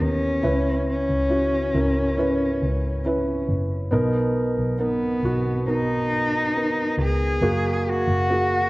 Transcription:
Already playing: E3 B3 E4 G4 A#4
0.00 D#2 C#4
0.42 C#2 C#3 C#4 E4 B4
0.90 C#4
1.09 C#2
1.29 C#4 E4 F#4
1.73 C#2 C#4 E4 A#4
2.17 C#4 E4 B4
2.62 C#2
3.05 C#4 E4 B4
3.49 F#1
3.91 B1 B2 B3 D#4 A#4
4.58 B1
4.79 B3 D#4 A#4
5.23 B1 B3 D#4 F#4
5.66 B3 D#4 A#4
6.54 B3 D#4 A#4
6.98 C#2 G#4
7.41 F#1 A#3 F#4 G#4
7.89 F#4
8.08 F#1
8.30 A#3 F#4 G#4

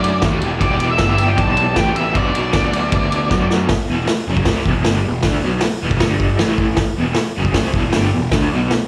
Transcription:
Already playing: F#2 A3 D4 F#4 D5
0.04 ride
0.22 D#2 D3 A3 D4 F#4, kick, snare, ride
0.40 E1 E2 B2 E3 G3 B3 G4, ride
0.60 E1 E2 B2 E3 G3 B3 G4 D5, kick, ride
0.79 E3 G3 B3 G4, ride
0.90 E5
0.98 G1 E3 G3 B3 G4, kick, snare, ride
1.10 E5
1.18 E3 G3 B3 G4, ride
1.28 G5
1.38 B1 A5, kick, ride
1.57 ride
1.75 A1 E2 B2 E3 G3 B3 G4 G5, kick, snare, ride
1.95 E3 G3 B3 G4 E5, ride
2.14 B1 B2 F#3 B3 D4 F#4 D5, kick, ride
2.34 B3 D4 F#4, ride
2.53 D2 F#3 B3 D4 F#4, kick, snare, ride
2.72 B3 D4 F#4, ride
2.92 D2, kick, ride
3.12 ride
3.30 F#2 B2 F#3 B3 D4 F#4, kick, snare
3.50 B3 D4 F#4, snare
3.69 kick, snare, open hi-hat
3.88 E1 E2 B2 E3
4.07 muted overdriven electric guitar stroke, muted picked electric bass stroke, snare, open hi-hat
4.27 F#1 F#2 C#3 F#3
4.37 kick
4.45 C2 C3 G3 C4, kick, snare, open hi-hat
4.65 E1 E2 B2 E3, kick
4.85 G1 G2 D3 G3, snare, open hi-hat
5.05 E1 E2 B2
5.23 D2 D3 A3 D4, kick, snare, open hi-hat
5.42 B1 B2 F#3 B3
5.61 muted overdriven electric guitar stroke, muted picked electric bass stroke, snare, open hi-hat
5.82 E1 E2 B2 E3
5.91 kick
6.00 G1 G2 D3 G3, kick, snare, open hi-hat
6.20 kick
6.39 A1 A2 E3 A3, snare, open hi-hat
6.58 kick
6.77 kick, snare, open hi-hat
6.97 E1 E2 B2 E3
7.15 muted overdriven electric guitar stroke, muted picked electric bass stroke, snare, open hi-hat
7.36 F#1 F#2 C#3 F#3
7.45 kick
7.54 C2 C3 G3 C4, kick, snare, open hi-hat
7.74 E1 E2 B2 E3, kick
7.93 G1 G2 D3 G3, snare, open hi-hat
8.13 E1 E2 B2
8.31 D2 D3 A3 D4, kick, snare, open hi-hat
8.51 B1 B2 F#3 B3
8.71 muted overdriven electric guitar stroke, muted picked electric bass stroke, snare, open hi-hat

